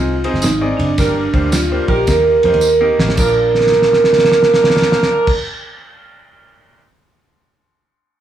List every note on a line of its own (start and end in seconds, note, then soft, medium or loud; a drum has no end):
0.00 0.25 C2 medium
0.00 0.13 C4 medium
0.00 0.13 D#4 medium
0.00 0.20 F4 medium
0.00 0.14 G#4 medium
0.00 0.14 C5 medium
0.24 0.46 C4 medium
0.24 0.46 D#4 medium
0.24 0.45 G#4 medium
0.24 0.45 C5 medium
0.24 ride medium
0.34 0.41 G1 medium
0.34 snare soft
0.41 0.72 G#1 medium
0.41 0.58 D#4 medium
0.41 snare loud
0.41 ride medium
0.41 tambourine medium
0.61 0.90 C4 medium
0.61 0.90 D#4 medium
0.61 0.90 G#4 medium
0.61 0.90 D5 medium
0.77 0.94 F#1 loud
0.77 1.54 D4 medium
0.77 ride medium
0.98 1.27 G1 loud
0.98 1.85 G2 medium
0.98 1.23 A#3 medium
0.98 1.23 D4 medium
0.98 1.14 D4 medium
0.98 1.13 G4 medium
0.98 1.24 G4 medium
0.98 1.23 A#4 medium
0.98 1.14 A#4 loud
0.98 kick loud
0.98 snare loud
0.98 ride medium
0.98 tambourine medium
1.33 1.78 D2 loud
1.33 1.55 A#3 medium
1.33 1.55 D4 medium
1.33 1.55 G4 medium
1.33 1.55 C5 medium
1.33 kick medium
1.33 ride medium
1.52 1.86 F4 medium
1.52 snare loud
1.52 ride medium
1.52 tambourine loud
1.71 2.00 A#3 medium
1.71 2.00 D4 medium
1.71 2.00 G4 medium
1.71 2.00 C5 medium
1.87 2.04 A#1 loud
1.87 2.23 D#4 medium
1.87 2.23 G4 loud
1.87 2.08 G4 medium
1.87 2.23 A#4 loud
1.87 kick loud
1.87 ride medium
2.07 2.36 D#2 medium
2.07 2.94 D#3 medium
2.07 2.33 A#3 medium
2.07 2.33 D#4 medium
2.07 2.33 G4 medium
2.07 2.94 A#4 loud
2.07 2.33 A#4 medium
2.07 kick loud
2.07 snare loud
2.07 ride medium
2.07 tambourine medium
2.43 2.52 F2 loud
2.43 2.65 A#3 medium
2.43 2.65 D#4 medium
2.43 2.65 G4 medium
2.43 2.66 C5 medium
2.43 ride medium
2.54 2.90 D#2 medium
2.54 ride soft
2.61 tambourine medium
2.80 3.09 A#3 medium
2.80 3.09 D#4 medium
2.80 3.09 G4 medium
2.80 3.09 A#4 medium
2.99 3.14 A1 medium
2.99 snare loud
3.09 snare loud
3.16 5.31 A#1 medium
3.16 5.31 A#1 loud
3.16 5.31 F3 medium
3.16 5.30 D4 medium
3.16 5.31 D4 medium
3.16 5.31 F4 medium
3.16 5.31 A#4 loud
3.16 5.31 A#4 medium
3.16 5.32 A#4 medium
3.16 kick loud
3.16 crash loud
3.16 tambourine medium
3.55 snare soft
3.61 snare medium
3.67 snare medium
3.72 snare medium
3.82 snare medium
3.93 snare medium
4.04 snare medium
4.13 snare medium
4.18 snare medium
4.24 snare medium
4.32 snare medium
4.43 snare medium
4.54 snare medium
4.64 snare medium
4.70 snare medium
4.77 snare medium
4.82 snare loud
4.92 snare loud
5.03 snare medium
5.27 kick loud
5.27 crash loud